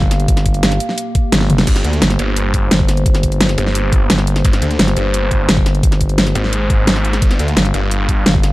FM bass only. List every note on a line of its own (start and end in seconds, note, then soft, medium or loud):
0.00 0.79 G1 loud
1.32 1.66 G1 loud
2.02 2.18 G1 loud
2.71 3.56 G1 loud
4.10 4.43 G1 loud
4.79 4.95 G1 loud
5.49 6.34 G1 loud
7.57 7.73 G1 loud
8.26 8.53 G1 loud